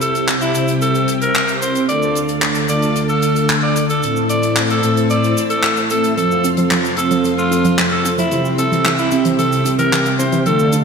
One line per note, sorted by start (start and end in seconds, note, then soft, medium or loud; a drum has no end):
0.00 0.52 C3 medium
0.00 1.87 C3 medium
0.00 0.52 C4 medium
0.00 1.87 C4 medium
0.00 0.52 E4 medium
0.00 0.52 G4 medium
0.00 1.87 G4 medium
0.00 0.34 A4 medium
0.00 0.52 C5 medium
0.00 1.87 E5 medium
0.00 1.87 G5 medium
0.00 closed hi-hat medium
0.00 cabasa medium
0.15 closed hi-hat medium
0.15 cabasa soft
0.28 clap loud
0.28 closed hi-hat medium
0.28 cabasa soft
0.41 0.74 E4 medium
0.41 closed hi-hat soft
0.41 cabasa soft
0.55 1.05 C3 medium
0.55 1.05 C4 medium
0.55 1.05 E4 medium
0.55 1.05 G4 medium
0.55 1.05 C5 medium
0.55 closed hi-hat medium
0.55 cabasa medium
0.68 closed hi-hat medium
0.68 cabasa soft
0.81 1.14 A4 medium
0.81 closed hi-hat medium
0.81 cabasa soft
0.95 closed hi-hat medium
0.95 cabasa soft
1.08 closed hi-hat medium
1.08 cabasa medium
1.22 1.54 A#4 medium
1.22 closed hi-hat medium
1.22 cabasa soft
1.35 clap loud
1.35 closed hi-hat medium
1.35 cabasa medium
1.48 closed hi-hat medium
1.48 cabasa soft
1.62 1.86 C4 medium
1.62 1.86 E4 medium
1.62 1.86 G4 medium
1.62 1.83 C5 medium
1.62 1.86 C5 loud
1.62 closed hi-hat medium
1.62 cabasa medium
1.75 closed hi-hat medium
1.75 cabasa soft
1.89 2.66 D3 medium
1.89 4.01 D3 medium
1.89 2.66 A3 medium
1.89 2.66 D4 medium
1.89 4.01 D4 medium
1.89 2.66 F4 medium
1.89 2.66 A4 loud
1.89 4.01 A4 medium
1.89 2.21 D5 medium
1.89 4.01 F5 medium
1.89 4.01 A5 medium
1.89 closed hi-hat medium
1.89 cabasa soft
2.02 cabasa soft
2.15 closed hi-hat medium
2.15 cabasa medium
2.28 closed hi-hat medium
2.28 cabasa soft
2.42 clap loud
2.42 closed hi-hat medium
2.42 cabasa medium
2.55 closed hi-hat soft
2.55 cabasa soft
2.69 4.00 D3 medium
2.69 4.00 A3 medium
2.69 4.00 D4 medium
2.69 4.00 F4 medium
2.69 4.00 A4 loud
2.69 3.01 D5 medium
2.69 closed hi-hat medium
2.69 cabasa medium
2.82 closed hi-hat medium
2.82 cabasa soft
2.96 closed hi-hat medium
2.96 cabasa soft
3.09 3.52 A4 medium
3.09 cabasa soft
3.22 closed hi-hat medium
3.22 cabasa medium
3.36 closed hi-hat medium
3.36 cabasa soft
3.49 clap loud
3.49 closed hi-hat medium
3.49 cabasa soft
3.63 3.84 D5 medium
3.76 closed hi-hat medium
3.76 cabasa medium
3.90 4.22 A4 medium
3.90 closed hi-hat medium
3.90 cabasa soft
4.03 4.80 A2 medium
4.03 6.15 A3 medium
4.03 4.80 A3 medium
4.03 4.80 C4 medium
4.03 6.15 E4 medium
4.03 4.80 E4 medium
4.03 4.80 A4 medium
4.03 6.15 C5 medium
4.03 6.15 A5 medium
4.03 6.15 E6 medium
4.03 closed hi-hat medium
4.03 cabasa medium
4.16 cabasa soft
4.29 4.62 D5 medium
4.29 closed hi-hat medium
4.29 cabasa medium
4.43 closed hi-hat medium
4.43 cabasa soft
4.56 clap loud
4.56 closed hi-hat medium
4.56 cabasa soft
4.70 5.02 A4 medium
4.70 closed hi-hat soft
4.70 cabasa soft
4.83 5.34 A2 medium
4.83 5.34 A3 medium
4.83 5.34 C4 medium
4.83 5.34 E4 medium
4.83 5.34 A4 medium
4.83 closed hi-hat medium
4.83 cabasa medium
4.97 closed hi-hat medium
4.97 cabasa soft
5.10 5.42 D5 medium
5.10 closed hi-hat medium
5.10 cabasa soft
5.24 closed hi-hat soft
5.24 cabasa soft
5.37 closed hi-hat medium
5.37 cabasa medium
5.50 5.83 A4 medium
5.50 closed hi-hat medium
5.50 cabasa soft
5.63 clap loud
5.63 closed hi-hat medium
5.63 cabasa soft
5.77 closed hi-hat soft
5.77 cabasa soft
5.90 6.14 A3 medium
5.90 6.14 C4 medium
5.90 6.14 E4 medium
5.90 6.12 A4 medium
5.90 6.14 A4 loud
5.90 closed hi-hat medium
5.90 cabasa medium
6.04 closed hi-hat medium
6.04 cabasa soft
6.17 6.23 F3 medium
6.17 8.29 F3 medium
6.17 6.95 F3 medium
6.17 10.42 C4 medium
6.17 6.95 C4 medium
6.17 6.95 F4 medium
6.17 6.50 A4 medium
6.17 8.30 A4 medium
6.17 6.95 A4 medium
6.17 6.95 C5 loud
6.17 8.29 F5 medium
6.17 8.30 C6 medium
6.17 closed hi-hat medium
6.17 cabasa soft
6.31 cabasa soft
6.44 6.53 C4 medium
6.44 closed hi-hat medium
6.44 cabasa medium
6.57 6.63 F3 medium
6.57 closed hi-hat medium
6.57 cabasa soft
6.71 6.76 F3 medium
6.71 clap loud
6.71 closed hi-hat medium
6.71 cabasa medium
6.85 closed hi-hat medium
6.85 cabasa soft
6.97 8.28 F3 medium
6.97 8.28 C4 medium
6.97 7.06 C4 medium
6.97 8.28 F4 medium
6.97 8.28 A4 medium
6.97 7.30 A4 medium
6.97 8.28 C5 loud
6.97 closed hi-hat medium
6.97 cabasa medium
7.11 7.16 F3 loud
7.11 closed hi-hat medium
7.11 cabasa soft
7.24 7.30 F3 medium
7.24 closed hi-hat medium
7.24 cabasa medium
7.38 7.81 F4 medium
7.38 cabasa soft
7.51 7.60 C4 medium
7.51 closed hi-hat medium
7.51 cabasa medium
7.65 7.70 F3 loud
7.65 closed hi-hat medium
7.65 cabasa soft
7.78 7.83 F3 medium
7.78 clap loud
7.78 closed hi-hat medium
7.78 cabasa soft
7.92 8.13 A4 medium
8.05 8.14 C4 medium
8.05 closed hi-hat medium
8.05 cabasa medium
8.18 8.23 F3 loud
8.18 8.51 E4 medium
8.18 closed hi-hat medium
8.18 cabasa soft
8.31 10.44 C3 medium
8.31 9.09 C3 medium
8.31 8.37 E3 medium
8.31 9.09 C4 medium
8.31 9.09 E4 medium
8.31 9.09 G4 medium
8.31 10.44 G4 medium
8.31 9.09 C5 medium
8.31 10.44 E5 medium
8.31 10.44 G5 medium
8.31 closed hi-hat medium
8.31 cabasa medium
8.45 cabasa soft
8.58 8.67 C4 medium
8.58 8.91 A4 medium
8.58 closed hi-hat medium
8.58 cabasa medium
8.72 8.77 E3 loud
8.72 closed hi-hat medium
8.72 cabasa soft
8.85 8.91 E3 medium
8.85 clap loud
8.85 closed hi-hat medium
8.85 cabasa medium
8.98 9.31 E4 medium
8.98 closed hi-hat soft
8.98 cabasa soft
9.11 9.62 C3 medium
9.11 9.62 C4 medium
9.11 9.21 C4 medium
9.11 9.62 E4 medium
9.11 9.62 G4 medium
9.11 9.62 C5 medium
9.11 closed hi-hat medium
9.11 cabasa medium
9.25 9.31 E3 loud
9.25 closed hi-hat medium
9.25 cabasa soft
9.39 9.44 E3 medium
9.39 9.71 A4 medium
9.39 closed hi-hat medium
9.39 cabasa medium
9.52 closed hi-hat soft
9.52 cabasa soft
9.66 9.74 C4 medium
9.66 closed hi-hat medium
9.66 cabasa medium
9.79 9.84 E3 loud
9.79 10.11 A#4 medium
9.79 closed hi-hat medium
9.79 cabasa soft
9.92 9.98 E3 medium
9.92 clap loud
9.92 closed hi-hat medium
9.92 cabasa medium
10.06 closed hi-hat medium
10.06 cabasa soft
10.19 10.28 C4 medium
10.19 10.43 C4 medium
10.19 10.43 E4 medium
10.19 10.43 G4 medium
10.19 10.41 C5 medium
10.19 10.43 C5 loud
10.19 closed hi-hat medium
10.19 cabasa medium
10.32 10.38 E3 medium
10.32 closed hi-hat medium
10.32 cabasa soft
10.46 10.84 D3 medium
10.46 10.51 F3 medium
10.46 10.84 A3 medium
10.46 10.84 D4 medium
10.46 10.84 F4 medium
10.46 10.84 A4 medium
10.46 10.84 A4 loud
10.46 10.78 A4 medium
10.46 10.84 F5 medium
10.46 10.84 A5 medium
10.46 closed hi-hat medium
10.46 cabasa soft
10.59 cabasa soft
10.72 10.81 D4 medium
10.72 closed hi-hat medium
10.72 cabasa medium